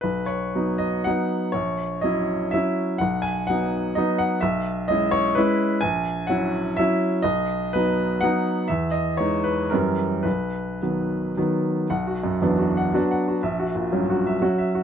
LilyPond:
<<
  \new Staff \with { instrumentName = "Grand piano" } { \time 3/4 \key b \major \tempo 4 = 122 b'8 cis''4 dis''8 fis''4 | cis''4 dis''4 e''4 | fis''8 gis''8 fis''4 dis''8 fis''8 | e''4 dis''8 cis''8 b'4 |
gis''4 fis''4 e''4 | dis''4 b'4 fis''4 | e''8 dis''8 cis''8 b'8 ais'4 | b'2 r4 |
\key b \minor \tuplet 3/2 { fis''8 fis'8 fis,8 e,8 fis'8 fis''8 fis'8 fis''8 fis'8 } | \tuplet 3/2 { e''8 fis'8 ais,8 g,8 fis'8 e''8 fis'8 e''8 fis'8 } | }
  \new Staff \with { instrumentName = "Grand piano" } { \clef bass \time 3/4 \key b \major b,,4 <fis b dis'>4 <fis b dis'>4 | ais,,4 <fis cis' e'>4 <fis cis' e'>4 | b,,4 <fis b dis'>4 <fis b dis'>4 | b,,4 <gis cis' e'>4 <gis cis' e'>4 |
ais,,4 <fis cis' e'>4 <fis cis' e'>4 | b,,4 <fis b dis'>4 <fis b dis'>4 | e,4 <e gis dis'>4 <fis, e g cis'>4 | b,,4 <dis fis b>4 <dis fis b>4 |
\key b \minor b,,4 <fis b d'>4 <fis b d'>4 | ais,,4 <fis cis'>4 <fis cis'>4 | }
>>